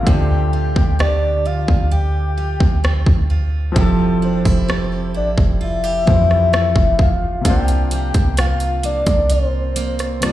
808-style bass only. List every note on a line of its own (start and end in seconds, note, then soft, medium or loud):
0.07 0.73 D2 loud
0.76 1.65 D2 loud
1.68 2.57 D2 medium
2.60 3.05 D2 loud
3.06 3.73 D2 loud
3.76 4.42 F1 loud
4.45 5.16 F1 loud
5.15 5.36 A1 medium
5.38 6.04 F1 medium
6.07 6.74 F2 loud
6.76 7.42 F1 loud
7.45 8.12 C2 loud
8.15 9.03 C2 loud
9.07 10.32 C2 medium